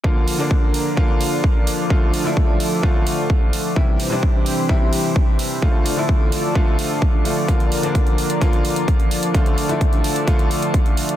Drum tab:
HH |--o---o---o---o-|--o---o---o---o-|--o---o---o---o-|--o---o---o---o-|
BD |o---o---o---o---|o---o---o---o---|o---o---o---o---|o---o---o---o---|

HH |xxoxxxoxxxoxxxox|xxoxxxoxxxoxxxox|
BD |o---o---o---o---|o---o---o---o---|